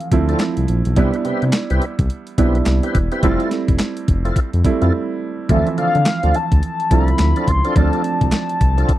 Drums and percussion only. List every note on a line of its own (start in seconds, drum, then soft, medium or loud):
0.00 closed hi-hat soft
0.12 kick medium
0.12 closed hi-hat medium
0.29 closed hi-hat medium
0.39 snare loud
0.39 clap medium
0.39 closed hi-hat medium
0.57 closed hi-hat medium
0.68 closed hi-hat medium
0.85 closed hi-hat medium
0.96 kick loud
0.96 closed hi-hat medium
1.14 closed hi-hat medium
1.25 closed hi-hat medium
1.42 closed hi-hat soft
1.53 snare loud
1.53 clap loud
1.53 closed hi-hat medium
1.70 closed hi-hat medium
1.82 closed hi-hat medium
1.99 kick medium
1.99 closed hi-hat medium
2.10 closed hi-hat medium
2.27 closed hi-hat soft
2.38 kick medium
2.38 closed hi-hat medium
2.55 closed hi-hat medium
2.66 snare loud
2.66 clap medium
2.66 closed hi-hat medium
2.83 closed hi-hat medium
2.95 kick medium
2.95 closed hi-hat medium
3.12 closed hi-hat medium
3.23 kick loud
3.23 closed hi-hat medium
3.40 closed hi-hat soft
3.51 snare medium
3.51 closed hi-hat medium
3.68 kick medium
3.68 closed hi-hat soft
3.79 snare loud
3.79 clap loud
3.79 closed hi-hat medium
3.97 closed hi-hat medium
4.08 kick medium
4.08 closed hi-hat medium
4.25 closed hi-hat medium
4.36 kick medium
4.36 closed hi-hat medium
4.53 closed hi-hat medium
4.64 kick medium
4.64 closed hi-hat medium
4.82 closed hi-hat soft
5.49 kick loud
5.49 closed hi-hat medium
5.67 closed hi-hat soft
5.78 closed hi-hat medium
5.95 closed hi-hat soft
6.06 snare loud
6.06 clap loud
6.06 closed hi-hat medium
6.23 closed hi-hat medium
6.34 closed hi-hat medium
6.52 kick medium
6.52 closed hi-hat medium
6.63 closed hi-hat medium
6.80 closed hi-hat medium
6.91 kick medium
6.91 closed hi-hat medium
7.08 closed hi-hat medium
7.19 snare loud
7.19 clap medium
7.19 closed hi-hat medium
7.36 closed hi-hat medium
7.48 kick medium
7.48 closed hi-hat medium
7.65 closed hi-hat medium
7.76 kick loud
7.76 closed hi-hat medium
7.93 closed hi-hat soft
8.04 closed hi-hat medium
8.21 kick medium
8.21 closed hi-hat soft
8.32 snare loud
8.32 clap medium
8.32 closed hi-hat medium
8.49 closed hi-hat medium
8.61 kick medium
8.61 closed hi-hat medium
8.78 closed hi-hat soft
8.89 kick medium
8.89 closed hi-hat medium